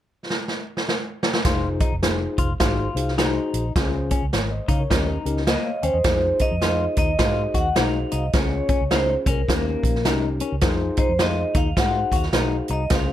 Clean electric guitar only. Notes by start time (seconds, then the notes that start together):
1.46 F4
1.81 D#4
2.39 F4
2.60 F4
3.18 D#4
4.11 C#4
4.68 D#4
4.90 D#4
5.48 A#3
5.83 C#4
6.41 D#4
6.62 F4
6.98 D#4
7.20 F4
7.55 F#4
7.76 D#4
8.12 D#4
8.69 C#4
8.92 D#4
9.27 C#4
9.49 A#3
10.06 D#4
10.41 C#4
10.98 D#4
11.20 F4
11.55 D#4
11.78 F4
12.13 F#4
12.34 D#4
12.71 D#4